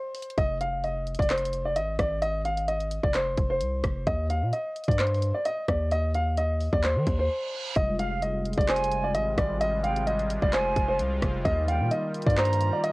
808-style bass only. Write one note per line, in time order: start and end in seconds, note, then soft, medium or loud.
0.38 1.16 F1 loud
1.19 1.77 F1 loud
1.76 1.98 G#1 loud
1.99 3.00 G#1 loud
3.04 3.36 F1 loud
3.38 3.62 F1 loud
3.61 3.83 C2 loud
3.84 4.06 F1 loud
4.07 4.44 D#2 loud
4.42 4.52 A#2 loud
4.88 5.33 G2 loud
5.68 6.69 D#2 loud
6.73 6.97 D#2 loud
6.96 7.06 D#3 loud
7.07 7.29 D#2 loud
7.76 8.54 F1 loud
8.57 9.16 F1 loud
9.15 9.37 G#1 loud
9.38 10.38 G#1 loud
10.42 10.75 F1 loud
10.76 11.01 F1 loud
10.99 11.21 C2 loud
11.22 11.44 F1 loud
11.45 11.82 D#2 loud
11.81 11.91 A#2 loud
12.27 12.71 G2 loud